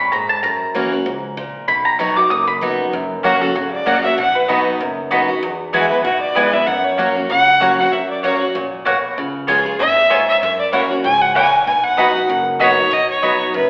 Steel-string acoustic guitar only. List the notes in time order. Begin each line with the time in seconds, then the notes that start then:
Already playing: A#2
0.13 G#2
0.44 F#2
0.75 E3 A#3 C#4 F#4
0.92 C#4 F#4
1.06 G#2
1.37 A#2
1.68 B2
2.00 F#3 B3 D#4 F#4
2.17 D#4 F#4
2.31 F#2
2.61 F#3 B3 D#4 F#4
2.93 F#2
3.24 F#3 A#3 C#4 F#4
3.41 C#4 F#4
3.55 C#3
3.86 F#3 A#3 C#4 F#4
4.04 C#4 F#4
4.18 B2
4.49 F#3 B3 D#4 F#4
4.80 F#2
5.11 F#3 B3 D#4 F#4
5.29 D#4 F#4
5.43 E2
5.73 E3 G#3 B3 E4
5.91 B3 E4
6.05 B2
6.36 E3 G#3 B3 E4
6.53 B3 E4
6.67 F#2
6.98 F#3 A#3 C#4 F#4
7.15 C#4 F#4
7.30 C#3
7.61 F#3 A#3 C#4 F#4
7.79 C#4 F#4
7.93 F#2
8.24 F#3 A#3 C#4 F#4
8.41 C#4 F#4
8.55 A#2
8.86 B2
9.18 C#3
9.48 G#3 B3 F4 G#4
9.66 F4 G#4
9.80 A#2
10.11 G#2
10.43 F#2
10.73 E3 A#3 C#4 F#4
10.91 C#4 F#4
11.04 G#2
11.36 A#2
11.67 B2
11.98 F#3 B3 D#4 F#4
12.15 D#4 F#4
12.29 F#2
12.60 F#3 B3 D#4 F#4
12.77 D#4 F#4
12.91 B2
13.22 F#3 B3 D#4 F#4
13.54 F#2